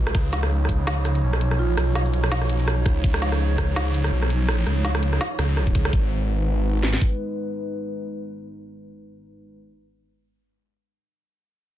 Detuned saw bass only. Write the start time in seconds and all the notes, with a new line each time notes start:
Already playing: B1
0.15 C#2
1.23 B1
1.78 B1
2.86 C#2
3.04 C#2
4.12 B1
4.66 C#2
5.39 C#2
5.75 C#2
5.93 G#1